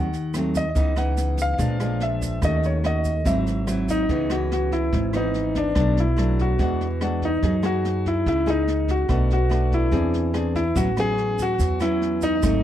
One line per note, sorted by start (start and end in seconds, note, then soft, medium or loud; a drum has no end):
0.00 0.72 D#2 medium
0.00 0.74 D#3 medium
0.00 0.31 F#5 medium
0.13 snare soft
0.13 shaker soft
0.34 0.63 F#3 medium
0.34 0.63 A3 medium
0.34 0.63 C4 medium
0.34 cross-stick medium
0.34 snare soft
0.34 shaker medium
0.55 0.99 D#5 medium
0.55 kick soft
0.55 snare soft
0.55 shaker medium
0.75 1.55 C#2 medium
0.75 1.57 C#3 medium
0.75 0.93 E3 medium
0.75 0.93 B3 soft
0.75 0.94 D#4 medium
0.75 kick medium
0.75 snare soft
0.75 shaker medium
0.96 1.57 E3 soft
0.96 1.58 B3 medium
0.96 1.58 D#4 medium
0.96 1.40 F#5 medium
0.96 cross-stick medium
0.96 snare soft
0.96 shaker soft
1.17 snare soft
1.17 shaker medium
1.37 kick soft
1.37 snare soft
1.37 shaker medium
1.42 2.04 F5 loud
1.58 2.39 A#1 medium
1.58 2.40 A#2 medium
1.58 1.76 F3 medium
1.58 1.76 G#3 medium
1.58 1.77 D4 medium
1.58 kick medium
1.58 snare soft
1.58 shaker medium
1.80 2.40 F3 medium
1.80 2.39 G#3 medium
1.80 2.40 D4 medium
1.80 cross-stick medium
1.80 snare soft
1.80 shaker soft
2.00 2.41 E5 medium
2.00 snare soft
2.22 kick soft
2.22 snare soft
2.22 shaker medium
2.42 3.22 D#2 medium
2.42 3.24 D#3 soft
2.42 2.81 A3 soft
2.42 2.81 C#4 soft
2.42 2.81 F#4 medium
2.42 2.65 D#5 medium
2.42 kick medium
2.42 cross-stick medium
2.42 snare soft
2.42 shaker medium
2.63 2.86 C#5 medium
2.63 snare soft
2.63 shaker soft
2.84 3.12 A3 medium
2.84 3.12 C#4 soft
2.84 3.12 F#4 medium
2.84 3.28 D#5 medium
2.84 cross-stick medium
2.84 snare soft
3.05 kick soft
3.05 snare soft
3.05 shaker medium
3.25 4.05 G#1 medium
3.25 4.07 G#2 medium
3.25 3.64 F#3 medium
3.25 3.64 C4 soft
3.25 3.64 E4 medium
3.25 3.85 E5 medium
3.25 kick medium
3.25 snare soft
3.25 shaker medium
3.47 snare soft
3.47 shaker soft
3.67 4.07 F#3 medium
3.67 4.07 C4 medium
3.67 4.08 E4 medium
3.67 cross-stick medium
3.67 snare soft
3.67 shaker medium
3.88 4.32 D#4 medium
3.88 kick soft
3.88 snare soft
3.88 shaker medium
4.09 4.89 C#2 medium
4.09 4.90 C#3 medium
4.09 4.27 E3 medium
4.09 4.27 B3 soft
4.09 4.27 D#4 medium
4.09 kick medium
4.09 snare soft
4.30 5.10 E3 medium
4.30 5.11 B3 medium
4.30 4.50 F#4 medium
4.30 cross-stick medium
4.30 snare soft
4.52 4.73 F#4 medium
4.52 snare soft
4.72 5.11 E4 medium
4.72 kick soft
4.72 snare soft
4.93 5.72 G#1 medium
4.93 5.74 G#2 medium
4.93 kick medium
4.93 snare soft
5.13 5.73 E3 medium
5.13 5.73 B3 medium
5.13 5.73 D#4 medium
5.13 5.58 D#4 medium
5.13 cross-stick medium
5.13 snare soft
5.34 snare soft
5.55 5.95 D4 medium
5.55 kick soft
5.55 snare soft
5.75 6.55 B1 medium
5.75 6.57 B2 medium
5.75 6.03 F#3 medium
5.75 6.03 A3 medium
5.75 6.03 D4 medium
5.75 kick medium
5.75 cross-stick medium
5.75 snare soft
5.97 6.41 E4 medium
5.97 snare soft
6.17 6.57 F#3 medium
6.17 6.58 A3 medium
6.17 6.57 D4 medium
6.17 cross-stick medium
6.17 snare soft
6.39 6.98 F#4 medium
6.39 kick soft
6.39 snare soft
6.58 7.39 E2 medium
6.58 7.40 E3 medium
6.58 6.86 G#3 medium
6.58 6.86 D4 medium
6.58 6.86 F#4 medium
6.58 kick medium
6.58 snare soft
6.81 snare soft
7.01 7.29 G#3 medium
7.01 7.29 D4 medium
7.01 7.29 F#4 medium
7.01 cross-stick medium
7.01 snare soft
7.22 7.66 D#4 medium
7.22 kick soft
7.22 snare soft
7.42 8.22 F#2 medium
7.42 8.24 F#3 medium
7.42 7.55 A#3 soft
7.42 7.55 D#4 medium
7.42 7.55 G#4 medium
7.42 kick medium
7.42 snare soft
7.62 8.43 A#3 medium
7.62 8.43 D#4 medium
7.62 8.07 F#4 medium
7.62 8.43 G#4 medium
7.62 cross-stick medium
7.62 snare soft
7.85 snare soft
8.05 8.27 E4 medium
8.05 kick soft
8.05 snare soft
8.26 9.06 C#2 medium
8.26 9.07 C#3 medium
8.26 8.49 E4 medium
8.26 kick medium
8.26 snare soft
8.46 9.06 A#3 medium
8.46 9.06 D#4 medium
8.46 8.91 D#4 medium
8.46 9.06 G#4 medium
8.46 cross-stick medium
8.46 snare soft
8.68 snare soft
8.88 9.31 F#4 medium
8.88 kick soft
8.88 snare soft
9.08 9.89 B1 medium
9.08 9.90 B2 medium
9.08 9.36 A3 medium
9.08 9.36 D4 medium
9.08 9.36 F#4 medium
9.08 kick medium
9.08 cross-stick medium
9.08 snare soft
9.30 9.74 F#4 medium
9.30 snare soft
9.49 9.90 A3 medium
9.49 9.91 D4 medium
9.49 9.91 F#4 medium
9.49 cross-stick medium
9.49 snare soft
9.72 10.32 E4 medium
9.72 kick soft
9.72 snare soft
9.91 10.72 E2 medium
9.91 10.73 E3 medium
9.91 10.30 C4 medium
9.91 10.31 D4 medium
9.91 10.31 G#4 medium
9.91 kick medium
9.91 snare soft
10.14 snare soft
10.34 10.62 C4 soft
10.34 10.62 D4 medium
10.34 10.62 G#4 medium
10.34 cross-stick medium
10.34 snare soft
10.55 10.77 E4 medium
10.55 kick soft
10.55 snare soft
10.75 11.55 A1 medium
10.75 11.57 A2 soft
10.75 10.88 F#3 medium
10.75 10.88 B3 soft
10.75 10.88 C#4 medium
10.75 10.98 F#4 loud
10.75 kick medium
10.75 snare soft
10.75 shaker medium
10.97 11.77 F#3 medium
10.97 11.77 B3 medium
10.97 11.77 C#4 medium
10.97 11.41 G#4 loud
10.97 cross-stick medium
10.97 snare soft
10.97 shaker soft
11.18 snare soft
11.38 11.83 F#4 loud
11.38 kick soft
11.38 snare soft
11.38 shaker medium
11.58 12.39 E2 medium
11.58 12.40 E3 medium
11.58 kick medium
11.58 snare soft
11.58 shaker medium
11.80 12.39 F#3 medium
11.80 12.39 B3 medium
11.80 12.40 C#4 medium
11.80 12.24 E4 medium
11.80 cross-stick medium
11.80 snare soft
11.80 shaker soft
12.02 snare soft
12.22 12.63 D#4 loud
12.22 kick soft
12.22 snare soft
12.22 shaker medium
12.42 12.63 G#1 medium
12.42 12.63 G#2 medium
12.42 12.63 F#3 medium
12.42 12.63 A3 medium
12.42 12.63 C4 medium
12.42 kick medium
12.42 cross-stick medium
12.42 snare soft
12.42 shaker medium